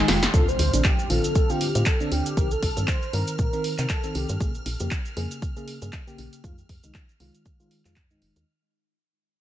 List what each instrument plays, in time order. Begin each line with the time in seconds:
Already playing: analog synth pad C4 D#4 F4, string machine C6
0.08 fm bass F1, fm electric piano D#3 G#3 F4, soft synth lead G4, snare, open hi-hat
0.23 snare, closed hi-hat, cabasa
0.34 fm bass D2, fm electric piano D3 C4 F4, soft synth lead A4, string machine F6, kick, closed hi-hat, impact, cabasa
0.48 soft synth lead C5, cabasa
0.59 fm bass D2, open hi-hat
0.73 fm bass A1, fm electric piano D3 C4 D4, closed hi-hat, cabasa
0.84 soft synth lead G4, kick, clap, closed hi-hat, cabasa
0.99 cabasa
1.10 fm bass A1, fm electric piano D3 C4 F4, soft synth lead A4, open hi-hat
1.24 closed hi-hat, cabasa
1.35 soft synth lead A4, kick, closed hi-hat, cabasa
1.50 fm electric piano D3 C4 F4, soft synth lead G4, cabasa
1.61 open hi-hat
1.75 fm bass A2, fm electric piano D3 C4 F4, closed hi-hat, cabasa
1.86 soft synth lead A4, kick, clap, closed hi-hat, cabasa
2.00 fm electric piano D3 C4 D4, cabasa
2.12 fm bass D2, soft synth lead G4, open hi-hat
2.26 closed hi-hat, cabasa
2.37 fm bass C2, fm electric piano D#3 C4 A#4, kick, closed hi-hat, cabasa
2.51 soft synth lead A4, cabasa
2.63 fm bass C2, kick, open hi-hat
2.77 fm bass G2, fm electric piano D#3 C4 A4, closed hi-hat, cabasa
2.88 soft synth lead C5, kick, clap, closed hi-hat, cabasa
3.02 cabasa
3.13 fm bass G2, fm electric piano D#3 C4 A#4, soft synth lead A#4, open hi-hat
3.27 closed hi-hat, cabasa
3.39 fm bass A#2, kick, closed hi-hat, cabasa
3.53 fm electric piano D#3 C4 A#4, cabasa
3.64 open hi-hat
3.78 fm bass C3, fm electric piano D#3 C4 A#4, clap, closed hi-hat, cabasa
3.89 soft synth lead A4, kick, clap, closed hi-hat, cabasa
4.04 fm electric piano D#3 C4 A4, cabasa
4.15 fm bass C2, soft synth lead G4, open hi-hat
4.29 fm bass G2, closed hi-hat, cabasa
4.40 fm bass A#1, fm electric piano C#3 A#3 G#4, kick, closed hi-hat, cabasa
4.55 cabasa
4.66 fm bass A#1, open hi-hat
4.80 fm bass F2, fm electric piano C#3 A#3 G4, closed hi-hat, cabasa
4.91 kick, clap, closed hi-hat, cabasa
5.05 cabasa
5.17 fm bass F2, fm electric piano C#3 A#3 G#4, open hi-hat
5.31 closed hi-hat, cabasa
5.42 kick, closed hi-hat, cabasa
5.56 fm electric piano C#3 A#3 G#4, cabasa
5.68 open hi-hat
5.82 fm bass G2, fm electric piano C#3 A#3 G#4, closed hi-hat, cabasa
5.93 kick, clap, closed hi-hat, cabasa
6.07 fm electric piano C#3 A#3 G4, cabasa
6.18 fm bass A#1, open hi-hat
6.33 closed hi-hat, cabasa
6.44 fm bass F2, fm electric piano D#3 G#3 F4, kick, closed hi-hat, cabasa
6.58 cabasa
6.69 fm bass F2, kick, open hi-hat
6.83 fm bass C2, fm electric piano D#3 G#3 D#4, closed hi-hat, cabasa
6.94 kick, clap, closed hi-hat, cabasa
7.09 cabasa
7.20 fm bass C2, fm electric piano D#3 G#3 F4, open hi-hat
7.35 closed hi-hat, cabasa
7.46 kick, closed hi-hat, cabasa
7.60 fm electric piano D#3 G#3 F4, cabasa
7.71 open hi-hat
7.85 fm bass F2, fm electric piano D#3 G#3 F4, clap, closed hi-hat, cabasa
7.96 kick, clap, closed hi-hat, cabasa
8.10 fm electric piano D#3 G#3 D#4, cabasa
8.22 fm bass F1, open hi-hat
8.36 fm bass D#2, closed hi-hat, cabasa